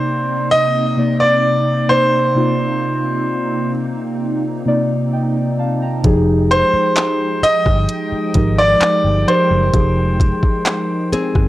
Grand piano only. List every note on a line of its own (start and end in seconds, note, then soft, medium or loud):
0.00 0.47 C5 loud
0.51 1.16 D#5 loud
1.20 1.91 D5 loud
1.89 3.70 C5 medium
6.51 7.46 C5 loud
7.43 8.62 D#5 loud
8.58 9.30 D5 loud
9.28 11.08 C5 medium